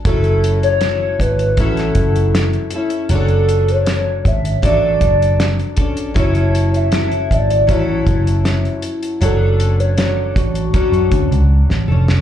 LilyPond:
<<
  \new Staff \with { instrumentName = "Soft synth lead" } { \time 4/4 \key fis \minor \tempo 4 = 79 a'8. cis''8. b'8 a'4. r8 | a'8. cis''8. e''8 d''4. r8 | cis''8. e''8. d''8 cis''4. r8 | a'8. cis''8. fis'2 r8 | }
  \new Staff \with { instrumentName = "Steel-string acoustic guitar" } { \time 4/4 \key fis \minor <fis cis' e' a'>4 <fis cis' e' a'>4 <fis cis' e' a'>4. <cis' e' a'>8 | <fis cis' d' a'>2 <fis d' a'>4. <cis' d' a'>8 | <fis cis' e' a'>4 <fis e' a'>4 <fis cis' e' a'>2 | <fis cis' d' a'>4 <fis cis' d' a'>4 <fis cis' d' a'>4. <cis' d' a'>8 | }
  \new Staff \with { instrumentName = "Picked electric bass" } { \clef bass \time 4/4 \key fis \minor fis,,4. gis,,8 a,,8 fis,,4 r8 | fis,,4. gis,,8 a,,8 fis,,4 r8 | fis,,4. gis,,8 a,,8 fis,,4 r8 | fis,,4. a,,8 r16 fis,16 d,16 cis,8 a,,16 eis,,8 | }
  \new DrumStaff \with { instrumentName = "Drums" } \drummode { \time 4/4 <hh bd>16 hh16 hh16 hh16 <hh sn>8 <hh bd>16 hh16 <hh bd>16 <hh sn>16 <hh bd>16 hh16 <hh sn>16 hh16 hh16 hh16 | hh16 hh16 hh16 hh16 <hh sn>8 <hh bd>16 hh16 <hh bd>8 <hh bd>16 hh16 <hh sn>16 hh16 <hh bd>16 hh16 | <hh bd>16 hh16 hh16 hh16 <hh sn>16 hh16 <hh bd>16 hh16 <hh bd>8 <hh bd>16 hh16 <hh sn>16 hh16 hh16 hh16 | hh8 hh16 hh16 <hh sn>8 <hh bd>16 hh16 <hh bd>16 hh16 <hh bd>16 hh16 r16 sn8 sn16 | }
>>